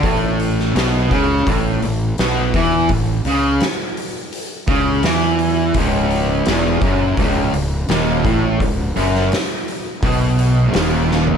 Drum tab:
HH |o-o-o-o-o-o-o-o-|o-o-o-o-o-o-o-o-|o-o-o-o-o-o-o-o-|o-o-o-o-o-o-o---|
SD |---oo-------o---|----o-------o---|----o-------o---|---oo-------o-o-|
FT |----------------|----------------|----------------|---------------o|
BD |o-----o-o-----o-|o---------o-----|o-----o-o-----o-|o-------o-------|